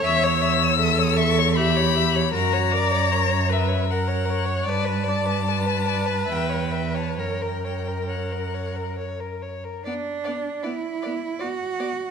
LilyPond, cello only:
\new Staff \with { instrumentName = "Cello" } { \clef bass \time 3/4 \key b \minor \tempo 4 = 76 e,2. | fis,2. | g,2 e,4 | fis,2~ fis,8. r16 |
d'4 e'4 fis'4 | }